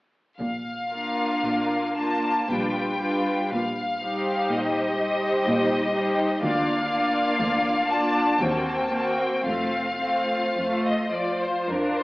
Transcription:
0.39 A#1 A#2 F5
0.91 A#3 D4 F4 A#4
1.45 A#2
1.96 A#3 D4 F4 A#4 A5
2.49 A#1 A#2 G3 D4 F4 B4 G5
3.00 G3 D4 F4 B4
3.53 A#1 A#2 F5
4.03 G3 D#4 G4 C5
4.51 A#2 D#5
4.99 G3 D#4 G4 C5
5.46 A#2
5.93 G3 D#4 G4 C5
6.42 D2 A#3 D4 F4 D5 F5
6.89 A#3 D4 F4 D5
7.40 D2
7.89 A#3 D4 F4 D5 A5
8.40 D#2 A#3 C4 F#4 C5 G5
8.50 A5
8.58 G5
8.67 A5
8.75 G5
8.83 A5
8.91 A#3 C4 F#4 C5 G5
8.98 A5
9.06 G5
9.44 F1 F2 A3 C4 F4 C5 F5
10.00 A3 C4 F4 C5
10.56 F2 A3
10.85 D#5
11.13 F3 F4 C5 D5
11.43 C5
11.68 F2 D4 A#4
11.98 C5

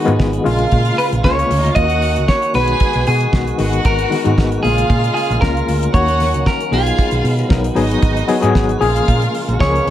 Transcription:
Already playing: D#3 F#3 G#3 B3 D#4 F#4 D#5
0.04 G#2 D#3 G#3 B3 F4, closed hi-hat
0.20 G#1, kick, snare
0.33 closed hi-hat
0.44 A#1 C#3 G#3 A#3 F4 F5, open hi-hat
0.59 closed hi-hat
0.71 A#2, kick, closed hi-hat
0.85 closed hi-hat
0.98 B4, open hi-hat
1.12 A#1, closed hi-hat
1.23 C#2 C#3 G#3 A#3 F4 G#4 C#5, kick, snare
1.33 A#3 A#4
1.39 B3 B4, closed hi-hat
1.50 D2 C#4 C#5, open hi-hat
1.59 D#4 D#5
1.65 closed hi-hat
1.69 F4 F5
1.75 D#2 D#3 A#3 C#4 F4 F#4 D#5 F#5, kick, closed hi-hat
1.84 F#4
1.90 closed hi-hat
2.02 open hi-hat
2.16 C#2, closed hi-hat
2.28 C#5, kick, snare
2.42 closed hi-hat
2.54 B1 D#3 G#3 B3 F#4 G#4 B4 G#5, open hi-hat
2.68 closed hi-hat
2.80 kick, closed hi-hat
2.93 B1, closed hi-hat
3.07 B2 G#4, open hi-hat
3.21 closed hi-hat
3.32 B1 D#3 G#3 B3 F#4, kick, snare
3.47 closed hi-hat
3.58 G#1 D#3 G#3 B3 F#4 F#5, open hi-hat
3.73 closed hi-hat
3.85 G#1 A#4, kick, closed hi-hat
3.99 closed hi-hat
4.10 D#3 G#3 B3 F#4, snare, open hi-hat
4.24 G#2 D#3 G#3 A#3 F#4, closed hi-hat
4.32 B3
4.38 G#1, kick, snare
4.52 closed hi-hat
4.63 A#1 B2 C#3 G#3 A#3 F4 G#4 F5, open hi-hat
4.69 C#3
4.78 closed hi-hat
4.90 A#2, kick, closed hi-hat
5.04 closed hi-hat
5.14 G#4, open hi-hat
5.30 A#1, closed hi-hat
5.41 C#2 C#3 G#3 A#3 F4 A#4, kick, snare
5.57 closed hi-hat
5.68 D2, open hi-hat
5.83 closed hi-hat
5.92 D#2 D#3 F#3 A#3 C#4 F#4 C#5 F#5, kick, closed hi-hat
6.08 closed hi-hat
6.20 snare, open hi-hat
6.34 C#2, closed hi-hat
6.46 A#4, kick, snare
6.60 closed hi-hat
6.70 B1 F#3 G#3 B3 D#4 F4 G#4 F5, open hi-hat
6.87 closed hi-hat
6.99 kick, closed hi-hat
7.11 B1, closed hi-hat
7.24 B2, open hi-hat
7.39 closed hi-hat
7.44 F#4
7.49 B1 F#3 B3 D#4 A#4, kick, snare
7.64 closed hi-hat
7.75 G#1 F#3 B3 D#4 F#4 G#4 D#5, open hi-hat
7.91 closed hi-hat
8.02 G#1, kick, closed hi-hat
8.17 closed hi-hat
8.28 F#3 B3 D#4 G#4, snare, open hi-hat
8.40 G#2 F#3 B3 D#4 G#4, closed hi-hat
8.55 G#1, kick, snare
8.69 closed hi-hat
8.80 A#1 F3 A#3 C#4 F4 G#4 F5, open hi-hat
8.84 C#3
8.96 closed hi-hat
9.08 A#2, kick, closed hi-hat
9.22 closed hi-hat
9.35 open hi-hat
9.48 A#1 F#4, closed hi-hat
9.59 C#2 F3 G#3 A#3 C#4 G#4 C#5, kick, snare
9.69 A#3 A#4
9.75 B3 B4, closed hi-hat
9.87 D2 C#4 C#5

